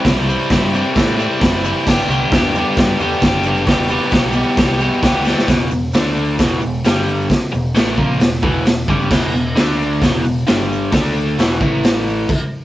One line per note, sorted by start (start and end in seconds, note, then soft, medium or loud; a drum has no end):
0.05 0.36 C2 loud
0.05 0.26 C3 medium
0.05 0.27 E3 loud
0.05 0.28 G3 loud
0.05 0.28 C4 medium
0.05 0.29 E4 loud
0.05 kick loud
0.05 snare loud
0.05 open hi-hat medium
0.05 shaker medium
0.27 0.47 C3 loud
0.27 0.49 E3 loud
0.27 0.50 G3 loud
0.27 0.50 C4 loud
0.27 0.50 E4 loud
0.27 shaker medium
0.42 shaker soft
0.49 0.81 G2 medium
0.49 0.72 C3 medium
0.49 0.73 E3 medium
0.49 0.73 G3 medium
0.49 0.74 C4 medium
0.49 0.74 E4 medium
0.49 kick loud
0.49 snare loud
0.49 open hi-hat medium
0.53 shaker medium
0.73 0.94 C3 medium
0.73 0.95 E3 loud
0.73 0.96 G3 medium
0.73 0.96 C4 medium
0.73 0.96 E4 medium
0.73 shaker medium
0.95 1.27 A2 medium
0.95 1.16 C3 medium
0.95 1.17 E3 loud
0.95 1.18 G3 loud
0.95 1.18 C4 medium
0.95 1.19 E4 loud
0.95 kick loud
0.95 snare loud
0.95 open hi-hat medium
0.95 shaker medium
1.17 1.39 C3 medium
1.17 1.40 E3 medium
1.17 1.41 G3 loud
1.17 1.40 C4 loud
1.17 1.41 E4 loud
1.17 shaker medium
1.31 shaker soft
1.40 1.72 F#1 medium
1.40 1.63 C3 medium
1.40 1.64 E3 medium
1.40 1.65 G3 loud
1.40 1.65 C4 loud
1.40 1.65 E4 medium
1.40 kick loud
1.40 snare loud
1.40 open hi-hat medium
1.40 shaker medium
1.64 1.85 C3 medium
1.64 1.86 E3 loud
1.64 1.88 G3 medium
1.64 1.86 C4 medium
1.64 1.86 E4 loud
1.64 shaker loud
1.77 shaker soft
1.86 2.02 G1 loud
1.86 2.07 G2 loud
1.86 2.08 D3 loud
1.86 2.09 G3 medium
1.86 2.09 B3 loud
1.86 2.09 D4 loud
1.86 2.11 G4 loud
1.86 kick loud
1.86 snare loud
1.86 crash loud
1.86 shaker medium
2.08 2.24 C2 medium
2.08 2.31 G2 loud
2.08 2.31 D3 loud
2.08 2.32 G3 loud
2.08 2.33 B3 loud
2.08 2.32 D4 loud
2.08 2.34 G4 loud
2.08 shaker loud
2.22 shaker soft
2.32 2.62 E2 medium
2.32 2.54 G2 loud
2.32 2.55 D3 medium
2.32 2.56 G3 medium
2.32 2.57 B3 medium
2.32 2.57 D4 medium
2.32 2.58 G4 medium
2.32 kick loud
2.32 snare loud
2.32 open hi-hat medium
2.32 shaker medium
2.55 2.75 G2 medium
2.55 2.76 D3 medium
2.55 2.78 G3 loud
2.55 2.78 B3 medium
2.55 2.78 D4 medium
2.55 2.79 G4 loud
2.55 shaker medium
2.76 2.98 G2 medium
2.76 2.92 G2 medium
2.76 2.98 D3 medium
2.76 3.00 G3 medium
2.76 3.01 B3 loud
2.76 3.00 D4 medium
2.76 3.02 G4 loud
2.76 kick loud
2.76 snare loud
2.76 open hi-hat medium
2.76 shaker medium
2.99 3.15 E2 medium
2.99 3.22 G2 medium
2.99 3.22 D3 medium
2.99 3.23 G3 medium
2.99 3.23 B3 medium
2.99 3.24 D4 loud
2.99 3.24 G4 loud
2.99 shaker medium
3.11 shaker soft
3.21 3.67 F#1 loud
3.21 3.43 G2 loud
3.21 3.44 D3 medium
3.21 3.45 G3 loud
3.21 3.46 B3 medium
3.21 kick loud
3.21 snare loud
3.21 open hi-hat medium
3.21 shaker medium
3.25 3.45 D4 loud
3.25 3.46 G4 loud
3.43 3.66 G2 medium
3.43 3.66 D3 medium
3.43 3.66 G3 medium
3.43 3.67 B3 medium
3.43 3.67 D4 loud
3.43 3.67 G4 medium
3.43 shaker loud
3.55 shaker soft
3.66 3.97 E1 loud
3.66 3.88 E2 medium
3.66 3.88 B2 loud
3.66 3.89 E3 loud
3.66 3.89 G3 loud
3.66 3.90 B3 medium
3.66 3.91 G4 loud
3.66 kick loud
3.66 snare loud
3.66 open hi-hat medium
3.66 shaker medium
3.89 4.09 E2 loud
3.89 4.09 B2 loud
3.89 4.10 E3 loud
3.89 4.11 G3 loud
3.89 4.12 B3 loud
3.89 4.12 G4 loud
3.89 shaker medium
3.99 shaker soft
4.10 4.43 B1 medium
4.10 4.32 E2 medium
4.10 4.32 B2 medium
4.10 4.33 E3 medium
4.10 4.33 G3 medium
4.10 4.34 B3 medium
4.10 4.35 G4 medium
4.10 kick loud
4.10 snare loud
4.10 open hi-hat medium
4.10 shaker medium
4.32 4.54 E2 medium
4.32 4.55 B2 medium
4.32 4.56 E3 medium
4.32 4.56 G3 loud
4.32 4.57 B3 loud
4.32 4.57 G4 loud
4.32 shaker medium
4.45 shaker soft
4.55 4.88 C2 loud
4.55 4.78 E2 medium
4.55 4.78 B2 loud
4.55 4.79 E3 medium
4.55 4.80 G3 loud
4.55 4.80 B3 loud
4.55 4.81 G4 loud
4.55 kick loud
4.55 snare loud
4.55 open hi-hat medium
4.55 shaker medium
4.79 5.00 E2 medium
4.79 5.01 B2 medium
4.79 5.02 E3 medium
4.79 5.03 G3 medium
4.79 5.03 B3 loud
4.79 5.03 G4 medium
4.79 shaker medium
4.92 shaker soft
5.02 5.33 D2 medium
5.02 5.23 E2 loud
5.02 5.25 B2 loud
5.02 5.25 E3 medium
5.02 5.26 G3 medium
5.02 5.26 B3 loud
5.02 5.27 G4 loud
5.02 kick loud
5.02 snare loud
5.02 open hi-hat medium
5.02 shaker medium
5.25 5.46 E2 medium
5.25 5.47 B2 medium
5.25 5.47 E3 medium
5.25 5.47 G3 medium
5.25 5.48 B3 medium
5.25 5.48 G4 medium
5.25 snare medium
5.25 shaker medium
5.38 snare medium
5.48 5.69 E1 medium
5.48 5.70 E2 medium
5.48 5.70 B2 loud
5.48 5.71 E3 medium
5.48 kick loud
5.48 snare loud
5.48 open hi-hat medium
5.48 shaker loud
5.71 5.92 E1 medium
5.71 5.90 E2 medium
5.71 5.90 B2 medium
5.71 shaker medium
5.93 6.36 D2 medium
5.93 6.39 D3 medium
5.93 6.39 A3 medium
5.93 6.39 D4 medium
5.93 snare loud
5.93 open hi-hat medium
5.93 shaker loud
6.16 shaker medium
6.28 shaker soft
6.39 6.60 E1 medium
6.39 6.61 E2 medium
6.39 6.61 B2 medium
6.39 6.62 E3 loud
6.39 kick loud
6.39 snare loud
6.39 open hi-hat medium
6.39 shaker loud
6.61 6.83 E1 medium
6.61 6.80 E2 medium
6.61 6.80 B2 medium
6.61 shaker medium
6.73 shaker soft
6.84 7.27 G1 loud
6.84 7.29 G2 loud
6.84 7.30 D3 loud
6.84 7.30 G3 loud
6.84 snare loud
6.84 open hi-hat medium
6.84 shaker loud
6.96 shaker soft
7.08 shaker medium
7.19 shaker soft
7.29 muted overdriven electric guitar stroke medium
7.29 muted picked electric bass stroke soft
7.29 kick loud
7.29 snare loud
7.29 open hi-hat medium
7.29 shaker medium
7.52 7.75 E1 medium
7.52 7.70 E2 medium
7.52 7.70 B2 medium
7.52 shaker medium
7.75 7.97 A1 medium
7.75 7.97 A2 medium
7.75 7.97 E3 loud
7.75 7.97 A3 medium
7.75 snare loud
7.75 open hi-hat medium
7.75 shaker medium
7.97 8.19 A#1 medium
7.97 8.19 A#2 medium
7.97 8.20 F3 loud
7.97 8.20 A#3 loud
7.97 kick loud
7.97 shaker medium
8.11 shaker soft
8.20 8.41 E1 medium
8.20 8.38 E2 medium
8.20 8.38 B2 medium
8.20 snare loud
8.20 open hi-hat medium
8.20 shaker loud
8.43 8.64 E1 medium
8.43 8.65 E2 medium
8.43 8.65 B2 medium
8.43 8.65 E3 loud
8.43 kick loud
8.56 shaker soft
8.66 8.87 E1 medium
8.66 8.84 E2 medium
8.66 8.84 B2 medium
8.66 snare loud
8.66 open hi-hat medium
8.66 shaker medium
8.79 shaker soft
8.88 9.09 G1 medium
8.88 9.10 G2 medium
8.88 9.11 D3 loud
8.88 9.11 G3 loud
8.88 kick loud
8.88 shaker medium
9.00 shaker soft
9.10 9.32 E1 loud
9.10 9.33 E2 medium
9.10 9.33 B2 loud
9.10 9.34 E3 loud
9.10 kick loud
9.10 snare loud
9.10 crash loud
9.10 shaker loud
9.33 9.55 E1 medium
9.33 9.52 E2 medium
9.33 9.52 B2 medium
9.33 shaker medium
9.55 9.99 D2 loud
9.55 10.01 D3 medium
9.55 10.01 A3 medium
9.55 10.02 D4 medium
9.55 snare loud
9.55 open hi-hat medium
9.55 shaker loud
9.81 shaker medium
9.93 shaker soft
10.02 10.23 E1 loud
10.02 10.23 E2 medium
10.02 10.24 B2 loud
10.02 10.25 E3 loud
10.02 kick loud
10.02 snare loud
10.02 open hi-hat medium
10.02 shaker loud
10.24 10.46 E1 medium
10.24 10.43 E2 medium
10.24 10.43 B2 medium
10.24 shaker medium
10.38 shaker soft
10.47 10.90 G1 medium
10.47 10.92 G2 loud
10.47 10.90 D3 loud
10.47 10.92 G3 loud
10.47 snare loud
10.47 open hi-hat medium
10.47 shaker loud
10.61 shaker soft
10.72 shaker medium
10.84 shaker soft
10.92 11.35 D2 loud
10.92 11.37 D3 medium
10.92 11.37 A3 loud
10.92 11.38 D4 loud
10.92 kick loud
10.92 snare loud
10.92 open hi-hat medium
10.92 shaker loud
11.17 shaker medium
11.38 11.60 E1 medium
11.38 11.60 E2 medium
11.38 11.60 B2 loud
11.38 11.60 E3 loud
11.38 snare loud
11.38 open hi-hat medium
11.38 shaker loud
11.51 shaker soft
11.60 12.25 A1 medium
11.60 12.28 A2 loud
11.60 12.29 E3 loud
11.60 12.29 A3 medium
11.60 kick loud
11.60 shaker medium
11.74 shaker soft
11.83 snare loud
11.83 open hi-hat medium
11.83 shaker loud
12.08 shaker medium
12.29 kick loud
12.29 crash loud